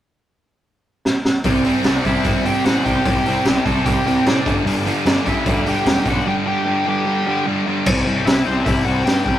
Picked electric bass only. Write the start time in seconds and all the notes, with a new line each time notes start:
1.45 C2
1.85 C2
2.05 C2
2.25 G1
2.65 A1
2.86 C2
3.06 C2
3.25 C2
3.45 C2
3.65 C2
3.86 C2
4.07 C2
4.26 A2
4.46 G1
4.66 G1
5.05 G1
5.26 G1
5.46 D2
5.86 E1
6.06 B1
7.87 C2
8.06 C2
8.26 C2
8.47 C2
8.66 C2
8.86 C2
9.07 G2
9.26 C2